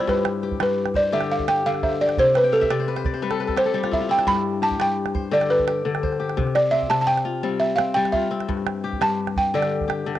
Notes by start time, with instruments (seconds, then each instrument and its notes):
Already playing: kora C3 G3 F4 G4 A4 B4 C5
0.00 kora E4
0.07 kora G2, balafon B4, calabash thump
0.17 calabash click
0.25 calabash click
0.42 kora G4, calabash click
0.51 calabash thump
0.60 kora G2, balafon B4, calabash click
0.86 calabash click
0.94 kora C5, balafon D5, calabash thump
1.12 kora D3 G4, balafon E5
1.21 calabash click
1.30 balafon F5, calabash click
1.39 calabash thump
1.48 kora G4, balafon G5, calabash click
1.66 kora D3, balafon F5
1.74 calabash click
1.83 kora C5, balafon E5, calabash thump
1.91 calabash click
2.01 kora G4, balafon D5
2.09 calabash click
2.17 kora C3, balafon C5, calabash thump
2.35 balafon B4, calabash click
2.44 kora G5
2.52 balafon A4, kora F5
2.61 kora E5, calabash thump, calabash click
2.70 kora C3 D5, calabash click
2.79 kora C5
2.88 kora B4
2.96 kora C5, calabash click
3.05 kora D5, calabash thump
3.14 kora C5, calabash click
3.22 kora G3 B4
3.30 kora A4, calabash click
3.40 kora B4
3.47 kora A4, calabash thump, calabash click
3.56 kora G4, balafon C5, calabash click
3.66 kora A4, calabash click
3.74 kora G3 G4
3.83 kora F4, calabash click
3.91 kora E4, balafon E5, calabash thump
4.01 kora F4
4.09 kora E4, balafon G5
4.18 kora D4, calabash click
4.27 kora G2, balafon B5, calabash thump
4.36 calabash click
4.62 kora G4, balafon A5, calabash click
4.71 calabash thump
4.79 kora G2, balafon G5, calabash click
5.06 calabash click
5.15 kora C5, calabash thump
5.32 kora D3 G4, balafon D5
5.41 calabash click
5.50 balafon B4, calabash click
5.59 calabash thump
5.67 kora G4, calabash click
5.85 kora D3
5.95 calabash click
6.03 kora C5, calabash thump
6.12 calabash click
6.20 kora G4
6.29 calabash click
6.37 kora C3, calabash thump
6.47 calabash click
6.55 balafon D5, calabash click
6.71 kora C4, balafon E5, calabash click
6.82 calabash thump
6.90 kora C3, balafon A5, calabash click
7.01 balafon A5
7.07 balafon G5
7.17 calabash click
7.25 kora F4
7.43 kora G3 C4
7.60 balafon E5, calabash click
7.76 kora C4, balafon F5, calabash click
7.94 kora G3, balafon G5
8.05 calabash click
8.12 kora F4, balafon E5, calabash thump
8.22 calabash click
8.31 kora C4
8.40 calabash click
8.48 kora G2, calabash thump
8.57 calabash click
8.66 calabash click
8.84 kora G4, calabash click
8.93 calabash thump
9.01 kora G2, balafon A5, calabash click
9.27 calabash click
9.36 balafon G5, calabash thump
9.54 kora D3 G4, balafon D5
9.62 calabash click
9.71 calabash click
9.80 calabash thump
9.88 kora G4, calabash click
10.06 kora D3
10.15 calabash click